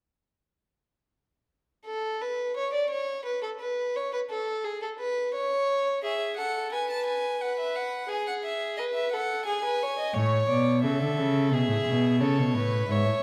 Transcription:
1.86 A4
2.21 B4
2.57 C#5
2.73 D5
2.90 C#5
3.25 B4
3.42 A4
3.60 B4
3.96 C#5
4.13 B4
4.30 A4
4.64 G#4
4.82 A4
4.99 B4
5.34 C#5
6.03 G#4 E5
6.37 A4 F#5
6.72 B4 G#5
6.90 A5
7.06 G#5
7.41 B4 F#5
7.60 E5
7.75 F#5
8.09 G#4 G#5
8.27 F#5
8.44 E5
8.77 B4 D#5
8.94 E5
9.12 A4 F#5
9.46 G#4 G#5
9.64 B4
9.83 C#5
9.99 D#5
10.14 A2 C#5
10.48 B2 D5
10.82 C#3 A4 E5
11.00 D3
11.18 C#3
11.52 B2 G#4 E5
11.68 A2
11.86 B2
12.20 C#3 A4 C#5
12.38 B2
12.54 A2 B4
12.89 G#2 C#5 E5
13.06 A2

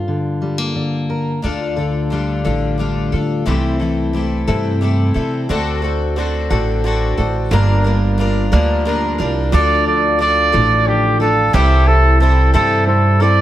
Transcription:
Already playing: G2 F4
0.08 D3
0.42 G3
0.58 A#3
0.75 D3
1.10 A#4
1.42 D2 D3 D4 F4 A4
1.76 D3 D4 F4 A4
2.10 D3 G3 D4 F4 A4
2.45 A1 A2 D3 D4 F4 A4
2.78 D3 G3 D4 F4 A4
3.12 D3 D4 F4 A4
3.46 C2 C3 E3 G3 A3 C4 E4 A4
3.50 E4
3.80 E3 G3 C4 E4 A4
4.13 G3 A3 C4 E4 A4
4.48 G2 C3 E3 G3 C4 E4 A4
4.81 G3 A3 C4 E4 A4
5.14 C3 G3 C4 E4 A4
5.49 D2 D3 A3 C4 F#4 A4 C5 D5
5.82 A3 C4 F#4 A4 C5 D5
6.16 D3 A3 C4 F#4 A4 C5 D5
6.49 A1 D3 A3 C4 F#4 A4 C5 D5
6.83 D3 A3 C4 F#4 C5 D5
6.88 A4
7.17 A1 A3 C4 F#4 A4 C5 D5
7.51 G1 G2 D3 F3 G3 A#3 D4 F4 A#4 D5
7.84 F3 G3 A#3 D4 F4 A#4 D5
8.18 F3 G3 A#3 D4 F4 A#4 D5
8.52 D2 G2 D3 F3 G3 A#3 D4 F4 A#4 D5
8.85 F3 G3 A#3 D4 F4 A#4 D5
9.18 C2 F3 G3 A#3 D4 F4 A#4 D5
9.52 D2 D3 F3 A3 D4 F4 A4 D5
9.86 F3 A3 D4 A4 D5
10.19 D3 F3 A3 D4 F4 A4 D5
10.52 A1 D3 F3 A3 D4 F4 A4 D5
10.86 F3 A3 D4 G4 A4 D5
11.19 F3 A3 D4 F4 A4 D5
11.23 D4
11.53 C2 C3 E3 G3 C4 E4 G4 A4 C5
11.87 G3 C4 E4 A4 C5
12.19 G3 C4 E4 A4 C5
12.23 A4
12.53 G2 C3 E3 G3 C4 E4 A4 C5
12.87 G3 C4 E4 A4 C5
13.20 G3 C4 E4 A4 C5 D5

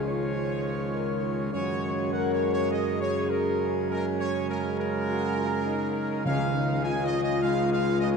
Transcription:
Already playing: C#2 D#3 F3 G#3 C#4 F4 G#4
0.05 C#5
0.35 F4
0.94 D#3 A#4
1.25 G#4
1.53 F#2 C#3 G#3 C#4 F#4 G#4 C#5
2.13 C#3 G#3 A#4 F#5
2.32 C#5
2.52 C#5
2.71 G#4 D#5
3.01 C#5
3.30 C#3 G#3 A#4
3.90 C#3 G#3 A#4
4.19 C#5
4.49 C#3 G#3 A#4
4.78 A#4
5.07 F#4
5.38 F4
5.66 D#4
6.25 C#2 C#3 D#3 G#3 C#4 G#4 F5
6.54 D#4
6.83 C#3 G#3 F4 G#5
7.04 D#5
7.23 D#5
7.41 C#3 G#3 F5
7.71 F5
7.99 C#3 G#3 D#5

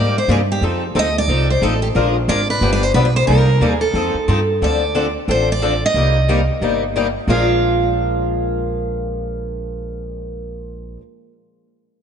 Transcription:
Already playing: G#2 C3 G3 A#3 D#4 G4 D5
0.18 C5
0.28 G2 C3 G3 A#3 D#4 G4 G#4
0.52 G4
0.61 F2 F3 C4 D#4 A4
0.95 D2 F3 C4 D#4 A4
0.99 D#5
1.18 D5
1.28 C2 F3 C4 D#4 A4
1.50 C5
1.62 A1 F3 C4 D#4 A4
1.82 G4
1.95 A#1 F3 G#3 D4 F4 A#4
2.28 G#1 F3 G#3 D4 F4 A#4 D5
2.50 B4
2.61 G1 D3 F3 B3 D4 G4
2.73 D5
2.83 C5
2.94 B1 D3 F3 B3 D4 G4 B4
3.05 B4
3.16 C5
3.27 C2 C3 G3 A#3 D#4 G4 A#4
3.61 D#2 C3 G3 A#3 D#4 G4
3.81 A4
3.94 F2 F3 C4 D#4 A4
4.14 muted upright bass stroke
4.28 G2 F3 C4 D#4 A4
4.62 D2 D3 F3 C4 D4 A4 D5
4.95 D3 F3 C4 D4 A4
5.28 A1 D3 F3 C4 D4 A4 C5
5.52 D5
5.62 D3 F3 C4 D4 A4
5.86 D#5
5.94 C2 C3 G3 A#3 D#4 G4
6.29 C3 G3 A#3 D#4 G4
6.61 G1 C3 G3 A#3 D#4 G4
6.96 C3 G3 A#3 D#4 G4
7.27 A#1 A#2 F3 G#3 D4 F4 A#4 F5

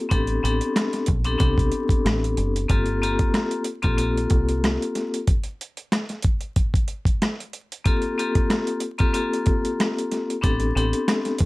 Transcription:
0.09 A1 B3 C4 D4 G4 A4, kick, closed hi-hat
0.27 closed hi-hat
0.43 A1 B3 C4 D4 G4 A4, closed hi-hat
0.61 closed hi-hat
0.76 cross-stick, snare, closed hi-hat
0.93 snare, closed hi-hat
1.06 A#1, kick, closed hi-hat
1.24 B3 C4 D4 G4 A4, closed hi-hat
1.38 C2 B3 C4 D4 G4 A4, kick, closed hi-hat
1.58 kick, closed hi-hat
1.72 closed hi-hat
1.89 kick, closed hi-hat
2.05 A1, cross-stick, snare, closed hi-hat
2.24 closed hi-hat
2.37 F#1, closed hi-hat
2.56 closed hi-hat
2.68 G1 A#3 C4 F4 G4 A4, kick, closed hi-hat
2.86 closed hi-hat
3.02 A#3 C4 F4 G4 A4, closed hi-hat
3.19 kick, closed hi-hat
3.34 cross-stick, snare, closed hi-hat
3.51 closed hi-hat
3.64 closed hi-hat
3.82 A#1 A#3 C4 F4 G4 A4, kick, closed hi-hat
3.97 A#3 C4 F4 G4 A4, closed hi-hat
4.17 closed hi-hat
4.30 C2, kick, closed hi-hat
4.49 closed hi-hat
4.64 cross-stick, snare, closed hi-hat
4.82 closed hi-hat
4.95 snare, closed hi-hat
5.14 closed hi-hat
5.27 kick, closed hi-hat
5.44 closed hi-hat
5.61 closed hi-hat
5.77 closed hi-hat
5.92 cross-stick, snare, closed hi-hat
6.09 snare, closed hi-hat
6.22 kick, closed hi-hat
6.41 closed hi-hat
6.56 kick, closed hi-hat
6.74 kick, closed hi-hat
6.88 closed hi-hat
7.05 kick, closed hi-hat
7.22 cross-stick, snare, closed hi-hat
7.40 closed hi-hat
7.53 closed hi-hat
7.72 closed hi-hat
7.85 A#3 C4 F4 G4 A4, kick, closed hi-hat
8.02 closed hi-hat
8.18 A#3 C4 F4 G4 A4, closed hi-hat
8.35 kick, closed hi-hat
8.50 cross-stick, snare, closed hi-hat
8.67 closed hi-hat
8.80 closed hi-hat
8.98 A#3 C4 F4 G4 A4, kick, closed hi-hat
9.13 A#3 C4 F4 G4 A4, closed hi-hat
9.34 closed hi-hat
9.46 kick, closed hi-hat
9.65 closed hi-hat
9.80 cross-stick, snare, closed hi-hat
9.98 closed hi-hat
10.11 snare, closed hi-hat
10.30 closed hi-hat
10.41 A1 B3 C4 D4 G4 A4, kick, closed hi-hat
10.60 closed hi-hat
10.75 A1 B3 C4 D4 G4 A4, closed hi-hat
10.93 closed hi-hat
11.08 cross-stick, snare, closed hi-hat
11.25 snare, closed hi-hat
11.38 A#1, kick, closed hi-hat

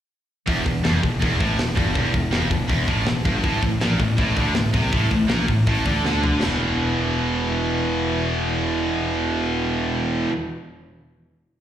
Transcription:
0.46 E1 E2, kick, open hi-hat
0.65 E1 E2, kick, open hi-hat
0.84 F1 F2, snare, open hi-hat
1.02 E1 E2, kick, open hi-hat
1.21 E1 E2, kick, open hi-hat
1.40 A1 A2, kick, open hi-hat
1.58 E1 E2, snare, open hi-hat
1.75 G1 G2, kick, open hi-hat
1.94 E1 E2, kick, open hi-hat
2.12 E1 E2, kick, open hi-hat
2.31 F1 F2, snare, open hi-hat
2.50 E1 E2, kick, open hi-hat
2.68 E1 E2, kick, open hi-hat
2.87 A1 A2, kick
3.05 E1 E2, snare, open hi-hat
3.25 G1 G2, kick, open hi-hat
3.42 A1 A2, kick, open hi-hat
3.63 A1 A2, kick, open hi-hat
3.81 A#1 A#2, snare, open hi-hat
4.00 A1 A2, kick, open hi-hat
4.17 A1 A2, kick, open hi-hat
4.36 D2 D3, kick, open hi-hat
4.54 A1 A2, snare, open hi-hat
4.73 C2 C3, kick, open hi-hat
4.91 A1 A2, kick, open hi-hat
5.11 A1 A2, kick, open hi-hat
5.28 A#1 A#2, snare
5.47 A1 A2, kick, open hi-hat
5.66 A1 A2, kick, open hi-hat
5.86 D2 D3, kick, open hi-hat
6.04 D2 D3, snare
6.24 floor tom
6.41 E1 E2 B2, snare, splash
6.45 E3

